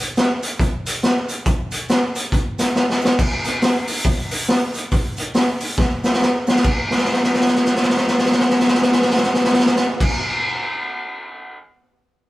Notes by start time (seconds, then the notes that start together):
0.16 snare, closed hi-hat, cabasa
0.43 closed hi-hat, cabasa
0.59 kick, closed hi-hat, cabasa
0.86 closed hi-hat, cabasa
1.02 snare, closed hi-hat, cabasa
1.29 closed hi-hat, cabasa
1.46 kick, closed hi-hat, cabasa
1.71 closed hi-hat, cabasa
1.89 snare, closed hi-hat, cabasa
2.15 closed hi-hat, cabasa
2.32 kick, closed hi-hat, cabasa
2.58 snare, closed hi-hat, cabasa
2.75 snare, cabasa
2.90 snare
3.01 snare, cabasa
3.19 kick, crash, cabasa
3.44 hi-hat pedal, open hi-hat, cabasa
3.61 snare, hi-hat pedal, open hi-hat, cabasa
3.87 hi-hat pedal, open hi-hat, cabasa
4.05 kick, hi-hat pedal, open hi-hat, cabasa
4.31 hi-hat pedal, open hi-hat, cabasa
4.48 snare, hi-hat pedal, open hi-hat, cabasa
4.74 hi-hat pedal, open hi-hat, cabasa
4.91 kick, hi-hat pedal, open hi-hat, cabasa
5.17 hi-hat pedal, open hi-hat, cabasa
5.34 snare, hi-hat pedal, open hi-hat, cabasa
5.60 hi-hat pedal, open hi-hat, cabasa
5.77 kick, snare, cabasa
6.04 snare, cabasa
6.13 snare
6.21 snare, cabasa
6.47 snare, cabasa
6.56 snare
6.64 kick, crash, cabasa
6.90 snare
6.97 snare
7.04 snare
7.13 snare
7.23 snare
7.33 snare
7.40 snare
7.47 snare
7.55 snare
7.65 snare
7.75 snare
7.83 snare
7.90 snare
7.97 snare
8.07 snare
8.18 snare
8.25 snare
8.32 snare
8.39 snare
8.49 snare
8.59 snare
8.67 snare
8.74 snare
8.82 snare
8.92 snare
9.02 snare
9.10 snare
9.16 snare
9.23 snare
9.34 snare
9.44 snare
9.52 snare
9.59 snare
9.66 snare
9.76 snare
10.00 kick, crash